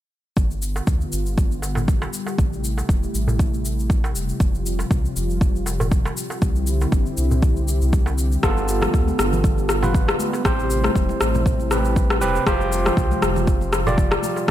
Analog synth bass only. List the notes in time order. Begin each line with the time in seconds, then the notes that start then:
0.37 G1
0.87 D2
1.13 G1
2.38 A1
2.89 E1
3.14 A1
4.15 E1
4.40 F1
4.91 C2
5.16 F1
6.42 C2
6.92 G1
7.17 C2
7.82 C2
8.43 G1
8.94 D2
9.19 G1
10.45 A1
10.95 E1
11.21 A1
12.22 E1
12.47 F1
12.97 C2
13.23 F1